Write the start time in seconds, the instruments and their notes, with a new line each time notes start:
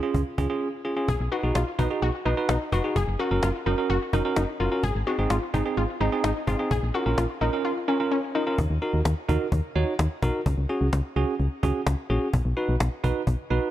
0.03 tine electric piano C#4 F4 G#4
0.14 fm bass C#2, cajon bass
0.38 fm bass C#2, tine electric piano C#4 F4 G#4, cajon bass
0.50 tine electric piano C#4 F4 G#4
0.85 tine electric piano C#4 F4 G#4
0.97 tine electric piano C#4 F4 G#4
1.08 fm bass B1, synth arpeggio sound G#4, cajon bass
1.20 fm bass B1
1.32 tine electric piano D#4 F#4 B4, synth arpeggio sound F#4, cajon slap
1.43 fm bass B1, tine electric piano D#4 F#4 G#4, cajon slap
1.55 fm bass B1, synth arpeggio sound F4, cajon slap
1.79 fm bass B1, tine electric piano D#4 F#4 B4, synth arpeggio sound D#4, cajon bass
1.90 tine electric piano D#4 F#4 G#4, cajon slap
2.02 fm bass B1, synth arpeggio sound F#4, cajon slap
2.25 fm bass B1, tine electric piano D#4 F#4 B4, synth arpeggio sound D#4, cajon slap
2.37 tine electric piano D#4 F#4 B4, cajon slap
2.49 fm bass B1, synth arpeggio sound D#4, cajon slap
2.72 fm bass F1, tine electric piano D#4 F#4 B4, synth arpeggio sound F#4, cajon bass
2.84 tine electric piano D#4 F#4 G#4
2.96 fm bass F#1, synth arpeggio sound G#4, cajon bass
3.08 fm bass F#1
3.19 tine electric piano C#4 F#4 A#4, synth arpeggio sound F#4, cajon slap
3.31 fm bass F#1, tine electric piano C#4 F#4 A#4, cajon slap
3.43 fm bass F#1, synth arpeggio sound F4, cajon slap
3.66 fm bass F#1, tine electric piano C#4 F#4 A#4, synth arpeggio sound D#4, cajon slap
3.78 tine electric piano C#4 F#4 A#4, cajon slap
3.90 fm bass F#1, synth arpeggio sound F#4, cajon slap
4.13 fm bass F#1, tine electric piano C#4 F#4 A#4, synth arpeggio sound D#4, cajon bass
4.25 tine electric piano C#4 F#4 A#4
4.36 fm bass F#1, synth arpeggio sound D#4, cajon slap
4.60 fm bass F#1, tine electric piano C#4 F#4 A#4, synth arpeggio sound F4, cajon slap
4.72 tine electric piano C#4 F#4 A#4, cajon slap
4.83 fm bass G#1, synth arpeggio sound G#4, cajon bass
4.95 fm bass G#1
5.07 tine electric piano C4 D#4 G#4, synth arpeggio sound F#4, cajon slap
5.19 fm bass G#1, tine electric piano C4 D#4 G#4, cajon slap
5.30 fm bass G#1, synth arpeggio sound F4, cajon slap
5.54 fm bass G#1, tine electric piano C4 D#4 G#4, synth arpeggio sound D#4, cajon bass
5.66 tine electric piano C4 D#4 G#4
5.77 fm bass G#1, synth arpeggio sound F4, cajon slap
6.01 fm bass G#1, tine electric piano C4 D#4 G#4, synth arpeggio sound D#4, cajon slap
6.12 tine electric piano C4 D#4 G#4, cajon slap
6.24 fm bass G#1, synth arpeggio sound D#4, cajon slap
6.47 fm bass G#1, tine electric piano C4 D#4 G#4, synth arpeggio sound F4, cajon bass
6.59 tine electric piano C4 D#4 G#4
6.71 fm bass A#1, synth arpeggio sound G#4, cajon bass
6.83 fm bass A#1
6.94 tine electric piano C#4 F4 A#4, synth arpeggio sound F#4, cajon slap
7.06 fm bass A#1, tine electric piano C#4 F4 A#4, cajon slap
7.18 fm bass A#1, synth arpeggio sound F4, cajon slap
7.41 fm bass A#1, tine electric piano C#4 F4 A#4, synth arpeggio sound D#4, cajon slap
7.53 tine electric piano C#4 F4 A#4, cajon slap
7.65 synth arpeggio sound F4
7.88 tine electric piano C#4 F4 A#4, synth arpeggio sound C#4
8.00 tine electric piano C#4 F4 A#4
8.12 synth arpeggio sound C#4
8.35 tine electric piano C#4 F4 A#4, synth arpeggio sound D#4
8.47 tine electric piano C#4 F4 A#4
8.58 fm bass D#2, cajon bass
8.70 fm bass D#2
8.82 tine electric piano D#4 F#4 A#4, cajon slap
8.94 fm bass D#2
9.05 fm bass D#2, cajon slap
9.29 fm bass D#2, tine electric piano D#4 F#4 A#4, cajon bass
9.52 fm bass D#2, cajon bass
9.76 fm bass D#2, tine electric piano D#4 F#4 C#5, cajon slap
9.99 fm bass D#2, cajon slap
10.22 fm bass B1, tine electric piano D#4 F#4 A#4, cajon bass
10.46 fm bass C#2, cajon bass
10.58 fm bass C#2
10.69 tine electric piano C#4 F#4 G#4, cajon slap
10.81 fm bass C#2
10.93 fm bass C#2, cajon slap
11.16 fm bass C#2, tine electric piano C#4 F#4 G#4, cajon slap
11.40 fm bass C#2, cajon slap
11.63 fm bass C#2, tine electric piano C#4 F#4 G#4, cajon bass
11.87 fm bass C#2, cajon slap
12.10 fm bass A#1, tine electric piano C#4 F#4 G#4, cajon slap
12.34 fm bass B1, cajon bass
12.45 fm bass B1
12.57 tine electric piano D#4 F#4 B4, cajon slap
12.69 fm bass B1
12.80 fm bass B1, cajon slap
13.04 fm bass B1, tine electric piano D#4 F#4 B4, cajon bass
13.27 fm bass B1, cajon bass
13.51 fm bass B1, tine electric piano D#4 F#4 B4, cajon slap